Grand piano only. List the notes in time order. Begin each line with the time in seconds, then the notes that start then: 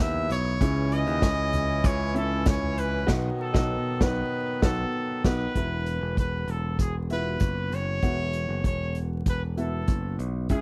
Already playing: E3 B3 E4 F#4 B4 E5
0.61 C#3 C#4 E4 G#4 C#5
2.14 C#4 E4 E5 G#5
3.07 B2 B3 D#4 F#4 D#5
3.53 B2 B3 D#4 F#4 D#5
4.01 B3 D#4 F#4 B4
4.62 B3 D#4 F#4 B4
5.25 B3 D#4 F#4 B4
5.55 E3 B3 E4 F#4 E5
7.10 B3 E4 F4 E5
7.17 F#4
8.02 E3 B3 E4 F#4 F#5
9.57 B3 E4 F#4 E5
10.50 C#3 C#4 E4 G#4 E5